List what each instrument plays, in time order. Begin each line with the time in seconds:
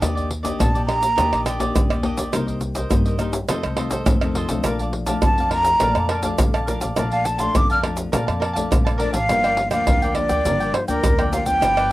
0.00 upright bass D#2, nylon-string guitar D#3 A#3 D4 G4, cavaquinho D4 G4 D5 D#5, pandeiro, tamborim, shaker, surdo
0.15 cavaquinho G4 D5 D#5, pandeiro, shaker, surdo
0.30 muted cavaquinho stroke, pandeiro
0.43 nylon-string guitar A#3 D4 G4, cavaquinho G4 D5 D#5, pandeiro, shaker, surdo
0.59 upright bass A#1, nylon-string guitar A#2, flute A5, pandeiro, tamborim, shaker, surdo
0.75 cavaquinho G4 D5 D#5, pandeiro, shaker
0.86 nylon-string guitar A#3 D4 G4, cavaquinho D4 G4 D5 D#5, flute A#5, pandeiro, tamborim
1.01 muted cavaquinho stroke, pandeiro, shaker
1.16 upright bass D#2, nylon-string guitar D#3 A#3 D4 G4, cavaquinho D4 G4 D5 D#5, pandeiro, tamborim, shaker, surdo
1.32 upright bass A#1, cavaquinho G4 D5 D#5, pandeiro, tamborim, shaker
1.46 cavaquinho D4 G4 D5 D#5, pandeiro, tamborim, shaker
1.59 nylon-string guitar A#3 D4 G4, cavaquinho G4 D5 D#5, pandeiro, shaker, surdo
1.75 upright bass D#2, nylon-string guitar A#2, pandeiro, tamborim, shaker, surdo
1.90 cavaquinho G4 D5 D#5, pandeiro, tamborim, shaker
2.03 nylon-string guitar A#3 D4 G4, cavaquinho D4 G4 D5 D#5, pandeiro, surdo
2.17 upright bass D#2, cavaquinho G4 D5 D#5, pandeiro, shaker, surdo
2.32 upright bass C2, nylon-string guitar C3 A#3 D#4 G4, cavaquinho D#4 A#4 C5 D#5, pandeiro, tamborim, shaker, surdo
2.47 cavaquinho A#4 C5 D#5, pandeiro, shaker, surdo
2.61 muted cavaquinho stroke, pandeiro, shaker
2.75 cavaquinho A#4 C5 D#5, pandeiro, shaker, surdo
2.90 nylon-string guitar G2 A#3 D#4 G4, upright bass G2, pandeiro, tamborim, shaker, surdo
3.05 cavaquinho A#4 C5 D#5, pandeiro, shaker
3.19 nylon-string guitar A#3 D#4 G4, cavaquinho D#4 A#4 C5 D#5, pandeiro, tamborim, shaker
3.33 pandeiro, shaker
3.48 nylon-string guitar F2 D#3 A3 C4, upright bass F2, cavaquinho F4 A4 C5 D#5, pandeiro, tamborim, shaker, surdo
3.63 upright bass C2, cavaquinho A4 C5 D#5, pandeiro, tamborim, shaker
3.77 nylon-string guitar D#3 A3 C4, cavaquinho F4 A4 C5 D#5, pandeiro, tamborim
3.91 cavaquinho A4 C5 D#5, pandeiro, shaker, surdo
4.06 upright bass F2, nylon-string guitar C3 D#3 A3 C4, pandeiro, tamborim, shaker, surdo
4.21 nylon-string guitar D#3 A3 C4, cavaquinho A4 C5 D#5, pandeiro, tamborim, shaker
4.35 cavaquinho F4 A4 C5 D#5, pandeiro, surdo
4.49 upright bass B1, nylon-string guitar F3 A3 D4, cavaquinho A4 C5 D#5, pandeiro, shaker, surdo
4.64 upright bass A#1, nylon-string guitar A#2, cavaquinho A#4 D5 F5 A5, pandeiro, tamborim, shaker, surdo
4.79 cavaquinho D5 F5 A5, pandeiro, shaker, surdo
4.93 muted cavaquinho stroke, pandeiro
5.06 nylon-string guitar F3 A3 D4, cavaquinho D5 F5 A5, pandeiro, shaker, surdo
5.22 upright bass F2, nylon-string guitar F2, flute A5, pandeiro, tamborim, shaker, surdo
5.38 cavaquinho D5 F5 A5, pandeiro, shaker
5.51 nylon-string guitar F3 A3 D4, cavaquinho A#4 D5 F5 A5, flute A#5, pandeiro, tamborim
5.65 muted cavaquinho stroke, pandeiro, shaker
5.80 upright bass A#1, nylon-string guitar A#2 F3 A3 D4, cavaquinho A#4 D5 F5 A5, pandeiro, tamborim, shaker, surdo
5.95 upright bass F2, cavaquinho D5 F5 A5, pandeiro, tamborim, shaker
6.09 cavaquinho A#4 D5 F5 A5, pandeiro, tamborim
6.23 nylon-string guitar F3 A3 D4, cavaquinho D5 F5 A5, pandeiro, shaker, surdo
6.38 upright bass A#1, nylon-string guitar F2, pandeiro, tamborim, shaker, surdo
6.54 cavaquinho D5 F5 A5, pandeiro, tamborim, shaker
6.67 nylon-string guitar F3 A3 D4, cavaquinho A#4 D5 F5 A5, pandeiro, shaker, surdo
6.81 upright bass A#1, cavaquinho D5 F5 A5, pandeiro, shaker, surdo
6.96 upright bass A#1, nylon-string guitar A#2 F3 A3 D4, cavaquinho A#4 D5 F5 A5, pandeiro, tamborim, shaker, surdo
7.12 cavaquinho D5 F5 A5, flute F5, pandeiro, shaker, surdo
7.25 flute A5, muted cavaquinho stroke, pandeiro, shaker
7.38 nylon-string guitar F3 A3 D4, cavaquinho D5 F5 A5, flute C6, pandeiro, shaker, surdo
7.55 upright bass F2, nylon-string guitar F2, flute D6, pandeiro, tamborim, shaker, surdo
7.70 cavaquinho D5 F5 A5, flute F6, pandeiro, shaker
7.82 nylon-string guitar F3 A3 D4, cavaquinho A#4 D5 F5 A5, pandeiro, tamborim
7.97 muted cavaquinho stroke, pandeiro, shaker
8.12 upright bass A#1, nylon-string guitar A#2 F3 A3 D4, cavaquinho A#4 D5 F5 A5, pandeiro, tamborim, shaker, surdo
8.27 upright bass F2, cavaquinho D5 F5 A5, pandeiro, tamborim, shaker
8.40 cavaquinho A#4 D5 F5 A5, pandeiro, tamborim
8.53 nylon-string guitar F3 A3 D4, cavaquinho D5 F5 A5, pandeiro, shaker, surdo
8.71 upright bass A#1, nylon-string guitar F2, pandeiro, tamborim, shaker, surdo
8.85 cavaquinho D5 F5 A5, pandeiro, tamborim, shaker
8.98 nylon-string guitar F3 A3 D4, cavaquinho A#4 D5 F5 A5, flute D5, pandeiro
9.13 upright bass A1, cavaquinho D5 F5 A5, flute F5, pandeiro, shaker, surdo
9.28 upright bass G1, nylon-string guitar G2 F3 A#3 D4, cavaquinho F4 A#4 D5 G5, pandeiro, tamborim, shaker, surdo
9.44 cavaquinho A#4 D5 G5, pandeiro, tamborim, shaker
9.57 muted cavaquinho stroke, pandeiro
9.71 upright bass D2, nylon-string guitar F3 A#3 D4, cavaquinho A#4 D5 G5, flute F5, pandeiro, tamborim, shaker
9.87 upright bass D2, nylon-string guitar D3, cavaquinho F4 A#4 D5 G5, pandeiro, tamborim, shaker, surdo
10.02 cavaquinho A#4 D5 G5, pandeiro, shaker
10.15 nylon-string guitar F3 A#3 D4, flute D5, pandeiro, tamborim
10.29 upright bass D2, cavaquinho A#4 D5 G5, pandeiro, shaker
10.45 upright bass G1, nylon-string guitar G2 F3 A#3 D4, cavaquinho F4 A#4 D5 G5, pandeiro, shaker, surdo
10.60 cavaquinho A#4 D5 G5, pandeiro, shaker
10.74 flute C5, muted cavaquinho stroke, pandeiro, tamborim
10.88 upright bass D2, nylon-string guitar F3 A#3 D4, flute A#4, cavaquinho A#4 D5 G5, pandeiro, shaker
11.04 upright bass D2, nylon-string guitar D3, pandeiro, tamborim, shaker, surdo
11.19 nylon-string guitar F3 A#3 D4, cavaquinho A#4 D5 G5, pandeiro, tamborim, shaker
11.33 cavaquinho F4 A#4 D5 G5, flute F5, pandeiro, shaker
11.46 upright bass D2, nylon-string guitar F3 B3 D4, flute G5, pandeiro, shaker
11.61 upright bass G1, nylon-string guitar G2, cavaquinho F4 G4 B4 D5, pandeiro, tamborim, shaker, surdo
11.77 cavaquinho G4 B4 D5, pandeiro, tamborim, shaker